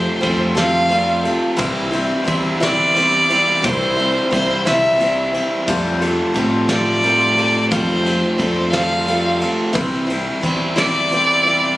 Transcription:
Already playing: F2 C3 F3 A3 C4 F4 G4 A4 C5
0.20 F2 F3 G3 A3 C4 G4 A4 C5, kick, ride
0.25 F4
0.55 F3 G3 A3 C4 F4 G4 A4 F5, snare, ride
0.89 F3 G3 A3 C4 G4 A4, ride
0.94 F4
1.23 C4 F4 G4 A4, ride
1.28 F3 A3
1.57 C2 C3 E3 G3 C4 E4 C5, kick, ride
1.62 G3 C4 E4
1.91 G3 C4 E4 C5, ride
1.98 G3
2.24 E2 E3 G3 C4 E4 C5, kick, ride
2.30 G3 C4 E4
2.60 C3 E3 G3 C4 E4 C5 D5, snare, ride
2.94 E3 G3 C4 E4 C5, ride
3.30 G3 C4 E4 C5, ride
3.62 C2 C3 E3 G3 C4 E4 C5, kick, ride
3.97 G3 C4 E4 C5, ride
4.30 C2 E3 G3 C4 E4 C5, kick, ride
4.65 C3 E3 G3 C4 E4 C5 E5, snare, ride
4.98 E3 G3 C4 E4, ride
5.02 C5
5.33 G3 C4 E4 C5, ride
5.66 F2 C3 F3 G3 A3 C4 F4 G4 A4, kick, crash
6.00 A3 F4 G4 A4, ride
6.04 F3 C4
6.34 A2 F3 G3 A3 C4 G4 A4, kick, ride
6.38 F4
6.68 G3 A3 C4 F4 G4 A4 D5, snare, ride
6.73 F3
7.03 F3 G3 A3 C4 F4 G4 A4, ride
7.37 F3 A3 C4 F4 G4 A4, ride
7.69 F2 C3 F3 G3 A3 C4 G4 A4 C5, kick, ride
7.74 F4
8.03 A3 F4 G4 A4, ride
8.07 F3 C4
8.37 F2 F3 G3 A3 C4 G4 C5, kick, ride
8.41 F4 A4
8.70 F3 G3 C4 F4 G4 A4 F5, snare, ride
8.75 A3
9.06 F3 G3 A3 C4 F4 G4 A4, ride
9.39 A3 C4 F4 G4 A4, ride
9.43 F3
9.73 C2 C3 E3 G3 C4 E4 C5, kick, ride
10.07 C4 E4 C5, ride
10.11 G3
10.41 E2 E3 G3 C4 E4 C5, kick, ride
10.76 C3 E3 G3 C4 E4 C5 D5, snare, ride
10.81 G3
11.10 E3 G3 C4 E4 C5, ride
11.43 G3 C4 E4 C5, ride

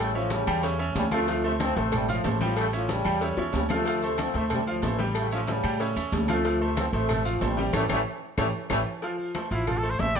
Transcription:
Already playing: A1
0.00 C#3 A3
0.14 A2 F3 C#4 C#5 E5, high conga
0.30 C#3 G3, cowbell, high conga, low timbale, low agogo, maracas
0.47 E2 G3 G4 G5, high conga, low agogo, claves, maracas
0.63 C#4 C#5 E5, cowbell, high conga, maracas
0.79 C#4 C#5 E5, high conga, low agogo
0.95 D2 C#3 G3, cowbell, high conga, low timbale, low agogo, maracas
1.11 C3 F3 A3 F4 F5, cowbell, high conga, low agogo, claves, maracas
1.28 F3 F4 F5, cowbell, high conga, low agogo, maracas
1.44 C3 A3 A4 C5, high conga
1.60 F3 C4, cowbell, high conga, low timbale, low agogo, claves, maracas
1.76 A1 C3 A3 A4 C5, cowbell, high conga, maracas
1.92 C3 G3, cowbell, high conga, low conga, low agogo, claves, maracas
2.08 A2 F3 F4 F5, high conga, low conga, maracas
2.24 A1 A2 E3 A3 A4 C5, cowbell, high conga, low timbale, low agogo, maracas
2.41 A2 F3 G3 G4 G5, cowbell, high conga, maracas
2.57 C#3 A3, cowbell, high conga, low agogo, claves, maracas
2.73 A2 F3 C#4 C#5 E5, high conga, maracas
2.89 C#3 G3, cowbell, high conga, low timbale, low agogo, maracas
3.05 E2 G3 G4 G5, high conga, low agogo, claves, maracas
3.21 C#4 C#5 E5, cowbell, high conga, maracas
3.37 E2 C#4 C#5 E5, high bongo, high conga, low agogo
3.53 D2 C#3 G3, cowbell, high conga, low timbale, low agogo, maracas
3.69 C3 F3 A3 F4 F5, cowbell, low bongo, high conga, low agogo, claves, maracas
3.85 F3 F4 F5, cowbell, high conga, low agogo, maracas
4.02 C3 A3 A4 C5, high conga, maracas
4.18 F3 C4, cowbell, high conga, low timbale, low agogo, claves, maracas
4.34 D2 C3 A3 A4 C5, cowbell, high conga, maracas
4.50 C3 G3, cowbell, high conga, low conga, low agogo, claves, maracas
4.67 A2 F3 F4 F5, high conga
4.82 A1 A2 E3 A3 A4 C5, cowbell, high conga, low timbale, low agogo, maracas
4.99 G3 G4 G5, cowbell, high conga, maracas
5.15 C#3 A3, cowbell, high conga, low agogo, claves, maracas
5.31 A2 F3 C#4 C#5 E5, high conga, maracas
5.47 C#3 G3, cowbell, high conga, low timbale, low agogo, maracas
5.63 A2 G3 G4 G5, high conga, low agogo, claves, maracas
5.80 C#4 C#5 E5, cowbell, high conga, maracas
5.96 E2 C#4 C#5 E5, high conga, low agogo, maracas
6.12 D2 C#3 G3, cowbell, high conga, low timbale, low agogo, maracas
6.28 C3 F3 A3 F4 F5, cowbell, high conga, low agogo, claves, maracas
6.45 F3 F4 F5, cowbell, high conga, low agogo, maracas
6.61 C3 A3 A4 C5, high conga
6.77 F3 C4, cowbell, high conga, low timbale, low agogo, claves, maracas
6.93 A1 C3 A3 A4 C5, cowbell, high conga, maracas
7.09 cowbell, high conga, low conga, low agogo, claves, maracas
7.25 F3 F4 F5, high conga, maracas
7.41 A1 C3 G3 A3 A4 C5, cowbell, high conga, low timbale, low agogo, maracas
7.57 G3 G4 G5, cowbell, high conga, maracas
7.73 A1 E3 G3 A3 G4 A4 C#5, cowbell, high conga, high timbale, claves, maracas
7.89 A1 E3 G3 A3 G4 A4 C#5, cowbell, high conga, high timbale, claves, maracas
8.38 A1 E3 G3 A3 G4 A4 C#5, cowbell, high conga, high timbale, claves, maracas
8.70 A1 E3 G3 A3 G4 A4 C#5, cowbell, high conga, high timbale, claves, maracas
9.02 F3 F4 F5, cowbell, high conga, low agogo
9.19 high conga
9.35 A3 A4 C5, cowbell, high conga, low timbale, low agogo, claves
9.51 A1 F3 E4 F4 F5, cowbell, high conga
9.67 F4, cowbell, high conga, low conga, low agogo, claves
9.79 A4
9.83 A3 A4 C5, high conga
9.90 C5
9.99 A1 A3 A4 C5 E5, cowbell, high conga, low timbale, low agogo
10.15 G3 G4 D5 G5, cowbell, high conga

